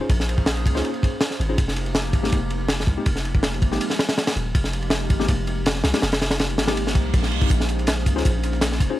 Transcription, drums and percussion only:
0.09 kick, ride
0.20 snare
0.29 ride
0.38 kick
0.46 snare, ride
0.57 ride
0.66 kick, ride
0.76 snare
0.84 ride
0.94 ride
1.03 kick, ride
1.21 snare, ride
1.31 snare
1.41 ride
1.58 kick, ride
1.68 snare
1.76 ride
1.86 ride
1.95 snare, ride
2.13 kick, ride
2.24 snare
2.32 kick, ride
2.50 ride
2.68 snare, ride
2.80 snare
2.87 kick, ride
3.06 kick, ride
3.16 snare
3.25 ride
3.35 kick
3.43 snare, ride
3.54 ride
3.62 kick, ride
3.72 snare
3.81 ride
3.90 snare
3.99 snare, ride
4.09 snare, ride
4.18 snare, ride
4.27 snare, ride
4.36 ride
4.55 kick, ride
4.64 snare
4.73 ride
4.82 ride
4.90 snare, ride
5.10 kick, ride
5.20 snare
5.28 kick, ride
5.47 ride
5.66 snare, ride
5.75 snare
5.84 snare, ride
5.94 snare, ride
6.02 snare, ride
6.12 snare, ride
6.22 snare, ride
6.31 snare, ride
6.39 snare, ride
6.50 ride
6.58 snare, ride
6.67 snare, ride
6.77 ride
6.87 snare
6.95 kick, ride
7.14 kick, ride
7.23 snare
7.32 ride
7.42 kick, ride
7.50 kick, closed hi-hat, ride
7.60 snare
7.69 closed hi-hat, ride
7.79 snare, ride
7.87 snare, closed hi-hat, ride
8.06 kick, closed hi-hat, ride
8.17 snare
8.25 kick, closed hi-hat, ride
8.43 closed hi-hat, ride
8.53 snare
8.61 snare, closed hi-hat, ride
8.72 snare
8.80 kick, closed hi-hat, ride

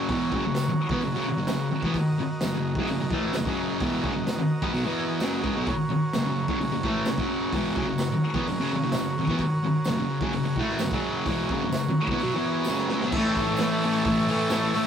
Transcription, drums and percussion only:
0.09 kick, open hi-hat
0.32 kick
0.55 snare, open hi-hat, tambourine
0.89 kick
1.01 open hi-hat
1.47 snare, open hi-hat, tambourine
1.83 kick
1.94 kick, open hi-hat
2.41 snare, open hi-hat, tambourine
2.75 kick
2.87 open hi-hat
3.11 kick
3.33 snare, open hi-hat, tambourine
3.45 kick
3.80 kick, open hi-hat
4.04 kick
4.27 snare, open hi-hat, tambourine
4.62 kick
4.74 open hi-hat
5.20 snare, open hi-hat, tambourine
5.44 kick
5.67 kick, open hi-hat
6.13 snare, open hi-hat, tambourine
6.48 kick
6.61 open hi-hat
6.83 kick
7.05 snare, open hi-hat, tambourine
7.18 kick
7.53 kick, open hi-hat
7.76 kick
7.98 snare, open hi-hat, tambourine
8.34 kick
8.47 open hi-hat
8.92 snare, open hi-hat, tambourine
9.27 kick
9.38 kick, open hi-hat
9.85 snare, open hi-hat, tambourine
10.21 kick
10.33 open hi-hat
10.56 kick
10.69 snare
10.79 snare, open hi-hat, tambourine
10.91 kick
11.26 kick, open hi-hat
11.49 kick
11.72 snare, open hi-hat, tambourine
12.07 kick
12.19 open hi-hat
12.64 snare, tambourine
12.77 snare
12.89 snare
13.00 snare
13.12 kick, crash
13.36 kick, open hi-hat
13.57 snare, open hi-hat, tambourine
13.82 open hi-hat
13.94 snare
14.05 kick, open hi-hat
14.29 open hi-hat
14.50 snare, open hi-hat, tambourine
14.74 open hi-hat

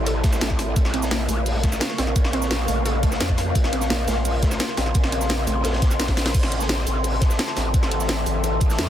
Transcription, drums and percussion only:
0.06 closed hi-hat, shaker
0.24 kick, snare, closed hi-hat, shaker
0.33 snare, shaker
0.41 snare, closed hi-hat, shaker
0.50 kick, snare
0.59 snare, closed hi-hat, open hi-hat, shaker
0.76 kick, closed hi-hat, shaker
0.85 snare
0.94 closed hi-hat
1.02 snare, shaker
1.11 snare, closed hi-hat, shaker
1.28 closed hi-hat, open hi-hat, shaker
1.46 closed hi-hat, open hi-hat, shaker
1.63 kick, snare, closed hi-hat, shaker
1.72 snare, shaker
1.80 snare, closed hi-hat, shaker
1.90 snare
1.98 snare, closed hi-hat, open hi-hat, shaker
2.07 snare
2.16 kick, closed hi-hat, shaker
2.24 snare
2.33 closed hi-hat
2.42 snare, shaker
2.51 snare, closed hi-hat, shaker
2.68 closed hi-hat, open hi-hat, shaker
2.85 closed hi-hat, shaker
3.03 kick, closed hi-hat, shaker
3.12 snare, shaker
3.20 snare, closed hi-hat, shaker
3.29 kick, snare
3.38 snare, closed hi-hat, open hi-hat, shaker
3.55 kick, closed hi-hat, shaker
3.64 snare
3.73 closed hi-hat
3.81 snare, shaker
3.90 snare, closed hi-hat, shaker
4.08 snare, closed hi-hat, open hi-hat, shaker
4.25 closed hi-hat, open hi-hat, shaker
4.42 kick, snare, closed hi-hat, shaker
4.51 snare, shaker
4.60 snare, closed hi-hat, shaker
4.68 snare
4.77 snare, closed hi-hat, open hi-hat, shaker
4.86 snare
4.94 kick, closed hi-hat, shaker
5.04 snare
5.12 closed hi-hat, shaker
5.21 snare, shaker
5.29 snare, closed hi-hat, shaker
5.47 closed hi-hat, open hi-hat, shaker
5.64 snare, closed hi-hat, shaker
5.73 snare, closed hi-hat
5.82 kick, snare, closed hi-hat, shaker
5.91 snare, closed hi-hat, shaker
6.00 snare, closed hi-hat, shaker
6.08 kick, snare
6.17 snare, closed hi-hat, open hi-hat, shaker
6.26 snare, closed hi-hat
6.34 kick, closed hi-hat, crash, shaker
6.43 snare
6.52 closed hi-hat
6.61 snare, shaker
6.69 snare, closed hi-hat, shaker
6.87 closed hi-hat, open hi-hat, shaker
7.04 closed hi-hat, open hi-hat, shaker
7.21 kick, snare, closed hi-hat, shaker
7.30 snare, shaker
7.39 snare, closed hi-hat, shaker
7.48 snare
7.57 snare, closed hi-hat, open hi-hat, shaker
7.74 kick, closed hi-hat, shaker
7.83 snare
7.91 closed hi-hat
8.00 snare, shaker
8.08 snare, closed hi-hat, shaker
8.26 closed hi-hat, open hi-hat, shaker
8.44 closed hi-hat, shaker
8.60 kick, closed hi-hat, shaker
8.70 snare, shaker
8.78 snare, closed hi-hat, shaker

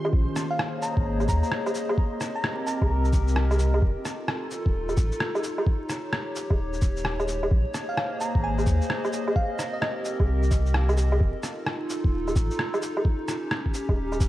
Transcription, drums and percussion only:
0.05 low woodblock
0.13 kick
0.36 cross-stick, cabasa, shaker
0.59 cross-stick
0.82 cabasa, shaker
0.97 kick
1.20 low woodblock, shaker
1.28 kick, cabasa, shaker
1.43 shaker
1.52 cross-stick
1.66 low woodblock, shaker
1.75 cabasa, shaker
1.89 low woodblock
1.98 kick
2.21 cross-stick, cabasa, shaker
2.44 cross-stick
2.67 cabasa, shaker
2.82 kick, low woodblock
3.05 shaker
3.13 kick, cabasa, shaker
3.28 shaker
3.36 cross-stick
3.51 low woodblock, shaker
3.59 cabasa, shaker
3.74 low woodblock
3.82 kick
4.05 cross-stick, cabasa, shaker
4.28 cross-stick
4.51 cabasa, shaker
4.66 kick
4.89 low woodblock, shaker
4.97 kick, cabasa, shaker
5.12 shaker
5.20 cross-stick
5.35 low woodblock, shaker
5.44 cabasa, shaker
5.58 low woodblock
5.67 kick
5.89 cross-stick, cabasa, shaker
6.13 cross-stick
6.36 cabasa, shaker
6.50 kick, low woodblock
6.73 shaker
6.82 kick, cabasa, shaker
6.97 shaker
7.05 cross-stick
7.20 low woodblock, shaker
7.28 cabasa, shaker
7.43 low woodblock
7.51 kick
7.74 cross-stick, cabasa, shaker
7.97 cross-stick
8.21 cabasa, shaker
8.35 kick
8.58 low woodblock, shaker
8.67 kick, cabasa, shaker
8.81 shaker
8.90 cross-stick
9.05 low woodblock, shaker
9.13 cabasa, shaker
9.28 low woodblock
9.36 kick
9.59 cross-stick, cabasa, shaker
9.82 cross-stick
10.05 cabasa, shaker
10.20 kick, low woodblock
10.43 shaker
10.51 kick, cabasa, shaker
10.66 shaker
10.74 cross-stick
10.89 low woodblock, shaker
10.97 cabasa, shaker
11.12 low woodblock
11.21 kick
11.43 cross-stick, cabasa, shaker
11.66 cross-stick
11.90 cabasa, shaker
12.04 kick
12.28 low woodblock, shaker
12.36 kick, cabasa, shaker
12.51 shaker
12.59 cross-stick
12.74 low woodblock, shaker
12.82 cabasa, shaker
12.97 low woodblock
13.05 kick
13.28 cross-stick, cabasa, shaker
13.51 cross-stick
13.66 kick
13.74 cabasa, shaker
13.89 kick, low woodblock
14.12 low woodblock, shaker
14.20 kick, cabasa, shaker

